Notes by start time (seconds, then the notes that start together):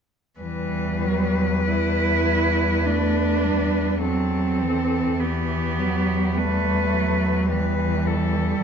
0.39 E2 E3 G3 B4
1.03 F#3
1.67 G3 E4
2.28 G3
2.86 A3 D4
3.44 G3
4.02 F#3 C4 A4
4.60 E3
5.19 E2 E3 B3 G4
5.78 F#3
6.36 G3 A3 B4
6.93 F#3
7.49 E3 G3 B4
8.06 A4